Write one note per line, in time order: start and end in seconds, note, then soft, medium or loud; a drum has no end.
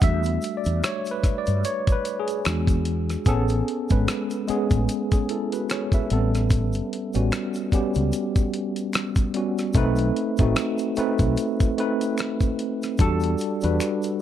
0.01 0.37 E2 loud
0.01 0.58 G3 medium
0.01 0.58 A3 soft
0.01 0.58 D4 medium
0.01 0.59 F#4 medium
0.01 0.58 E5 loud
0.01 kick loud
0.01 closed hi-hat medium
0.01 shaker medium
0.24 closed hi-hat soft
0.24 shaker soft
0.42 closed hi-hat medium
0.42 shaker soft
0.57 0.84 D5 medium
0.64 0.81 E2 medium
0.64 closed hi-hat soft
0.64 shaker soft
0.84 1.11 C#5 loud
0.84 finger snap medium
0.84 cross-stick loud
0.84 closed hi-hat medium
0.84 shaker medium
1.06 closed hi-hat soft
1.06 shaker soft
1.11 1.38 B4 medium
1.24 muted fretless electric bass stroke soft
1.24 kick medium
1.24 cross-stick soft
1.24 closed hi-hat medium
1.24 shaker soft
1.38 1.65 D5 medium
1.46 1.62 G2 medium
1.46 closed hi-hat soft
1.46 shaker soft
1.64 1.92 C#5 medium
1.64 closed hi-hat medium
1.64 shaker medium
1.87 kick medium
1.87 closed hi-hat soft
1.87 shaker soft
1.92 2.19 B4 medium
2.05 closed hi-hat medium
2.05 shaker soft
2.20 3.23 G#4 medium
2.28 closed hi-hat medium
2.28 shaker soft
2.45 3.15 E2 medium
2.45 3.22 G#3 medium
2.45 3.23 D4 soft
2.45 3.23 F#4 medium
2.45 finger snap medium
2.45 cross-stick loud
2.45 closed hi-hat medium
2.45 shaker medium
2.67 kick medium
2.67 closed hi-hat soft
2.67 shaker soft
2.85 closed hi-hat medium
3.10 cross-stick soft
3.10 closed hi-hat soft
3.10 shaker soft
3.26 3.61 A1 medium
3.26 3.85 B3 loud
3.26 3.85 C#4 medium
3.26 3.84 G#4 medium
3.26 3.86 A4 loud
3.26 kick loud
3.26 closed hi-hat medium
3.26 shaker medium
3.48 closed hi-hat soft
3.48 shaker soft
3.68 closed hi-hat medium
3.89 4.06 G#1 medium
3.89 4.44 G#3 medium
3.89 4.44 B3 medium
3.89 4.45 C#4 medium
3.89 4.45 B4 medium
3.89 kick medium
3.89 closed hi-hat soft
3.89 shaker soft
4.08 finger snap medium
4.08 cross-stick loud
4.08 closed hi-hat medium
4.08 shaker medium
4.30 closed hi-hat soft
4.30 shaker soft
4.48 5.23 G#3 medium
4.48 5.24 B3 medium
4.48 4.89 C#4 medium
4.48 4.89 G#4 medium
4.48 muted fretless electric bass stroke soft
4.48 closed hi-hat medium
4.48 shaker soft
4.70 4.86 A1 medium
4.70 kick medium
4.70 closed hi-hat soft
4.70 shaker soft
4.89 closed hi-hat medium
4.89 shaker medium
5.12 5.29 C#4 medium
5.12 5.29 G#4 medium
5.12 kick medium
5.12 closed hi-hat soft
5.12 shaker soft
5.29 5.52 E4 medium
5.29 5.51 A4 medium
5.29 closed hi-hat medium
5.52 5.69 F#4 medium
5.52 5.69 B4 medium
5.52 closed hi-hat medium
5.52 shaker soft
5.70 5.92 G#4 medium
5.70 5.92 C#5 medium
5.70 finger snap medium
5.70 cross-stick medium
5.70 closed hi-hat medium
5.70 shaker medium
5.92 6.32 B4 medium
5.92 6.32 E5 medium
5.92 kick medium
5.92 closed hi-hat soft
5.92 shaker soft
6.10 6.80 A1 medium
6.10 7.06 G3 medium
6.10 7.06 B3 medium
6.10 6.18 C4 medium
6.10 7.07 A4 medium
6.10 closed hi-hat medium
6.19 7.10 C#4 medium
6.35 cross-stick soft
6.35 closed hi-hat soft
6.35 shaker soft
6.50 kick loud
6.50 closed hi-hat medium
6.50 shaker medium
6.73 closed hi-hat soft
6.73 shaker soft
6.93 closed hi-hat medium
7.13 7.30 A1 medium
7.13 7.68 G3 medium
7.13 7.68 B3 medium
7.13 7.69 C#4 medium
7.13 7.69 F#4 medium
7.13 closed hi-hat soft
7.13 shaker soft
7.32 finger snap medium
7.32 cross-stick loud
7.32 closed hi-hat medium
7.32 shaker medium
7.54 closed hi-hat soft
7.54 shaker soft
7.72 9.24 G3 medium
7.72 9.24 B3 medium
7.72 9.24 C#4 medium
7.72 9.25 G4 medium
7.72 muted fretless electric bass stroke soft
7.72 kick medium
7.72 closed hi-hat medium
7.72 shaker soft
7.94 8.11 C#2 medium
7.94 closed hi-hat soft
7.94 shaker soft
8.12 closed hi-hat medium
8.12 shaker medium
8.36 kick medium
8.36 closed hi-hat soft
8.36 shaker soft
8.54 closed hi-hat medium
8.76 closed hi-hat medium
8.76 shaker soft
8.93 finger snap medium
8.93 cross-stick loud
8.93 closed hi-hat medium
8.93 shaker medium
9.16 kick medium
9.16 closed hi-hat soft
9.16 shaker soft
9.34 9.72 G3 medium
9.34 9.72 B3 medium
9.34 9.73 C#4 medium
9.34 9.73 F#4 medium
9.34 closed hi-hat medium
9.58 cross-stick soft
9.58 closed hi-hat soft
9.58 shaker soft
9.73 10.10 B1 loud
9.73 10.33 A3 loud
9.73 10.33 C4 loud
9.73 10.34 D#4 loud
9.73 10.34 B4 loud
9.73 kick loud
9.73 closed hi-hat medium
9.73 shaker medium
9.96 closed hi-hat soft
9.96 shaker soft
10.16 closed hi-hat medium
10.37 10.54 A1 medium
10.37 10.93 A3 medium
10.37 10.93 C4 medium
10.37 10.93 D#4 medium
10.37 kick medium
10.37 closed hi-hat soft
10.37 shaker soft
10.41 10.94 F#4 medium
10.56 finger snap medium
10.56 cross-stick loud
10.56 closed hi-hat medium
10.56 shaker medium
10.78 closed hi-hat soft
10.78 shaker soft
10.96 11.72 A3 medium
10.96 11.73 C4 medium
10.96 11.73 D#4 medium
10.96 11.73 B4 medium
10.96 muted fretless electric bass stroke soft
10.96 closed hi-hat medium
10.96 shaker soft
11.19 11.35 B1 medium
11.19 kick medium
11.19 closed hi-hat soft
11.19 shaker soft
11.37 closed hi-hat medium
11.37 shaker medium
11.60 kick medium
11.60 closed hi-hat soft
11.60 shaker soft
11.78 12.91 A3 medium
11.78 12.92 C4 medium
11.78 12.92 D#4 medium
11.78 12.92 B4 medium
11.78 closed hi-hat medium
12.01 closed hi-hat medium
12.01 shaker soft
12.18 finger snap medium
12.18 cross-stick loud
12.18 closed hi-hat medium
12.18 shaker medium
12.40 kick medium
12.40 closed hi-hat soft
12.40 shaker soft
12.59 closed hi-hat medium
12.82 cross-stick soft
12.82 closed hi-hat soft
12.82 shaker soft
12.98 13.34 E2 medium
12.98 13.57 G3 loud
12.98 13.58 D4 loud
12.98 13.58 F#4 medium
12.98 13.58 A4 loud
12.98 kick loud
12.98 closed hi-hat medium
12.98 shaker medium
13.20 closed hi-hat soft
13.20 shaker soft
13.38 closed hi-hat medium
13.38 shaker soft
13.61 13.78 E2 medium
13.61 14.17 G3 medium
13.61 14.17 D4 medium
13.61 14.17 F#4 medium
13.61 14.18 B4 medium
13.61 closed hi-hat soft
13.61 shaker soft
13.80 finger snap medium
13.80 closed hi-hat medium
13.80 shaker medium
14.02 closed hi-hat soft
14.02 shaker soft